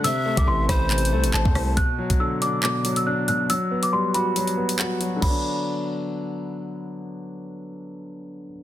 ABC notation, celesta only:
X:1
M:4/4
L:1/16
Q:1/4=139
K:Bphr
V:1 name="Celesta"
e'3 d' c'2 z6 a4 | f'4 e'2 d'2 d'3 e' f'2 f'2 | e'3 d' c'2 b8- b2 | b12 z4 |
z16 |]